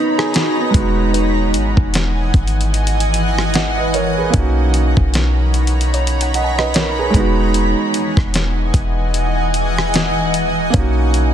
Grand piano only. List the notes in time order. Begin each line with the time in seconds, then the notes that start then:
Already playing: F#3 B3 D#4
0.18 G#4
0.35 F#4
0.58 B3 D#4
0.70 G#3 B3
0.77 D#4 F#4
3.55 D#5 F#5
3.78 B4 D#5
3.94 A#4 C#5
4.17 G#4 B4
4.30 A#3 C#4
4.36 D#4 F#4
6.35 D#5 F#5
6.58 B4 D#5
6.75 A#4 C#5
6.98 G#4 B4
7.10 G#3 B3
7.16 D#4 F#4
10.70 A#3 C#4
10.76 D#4 F#4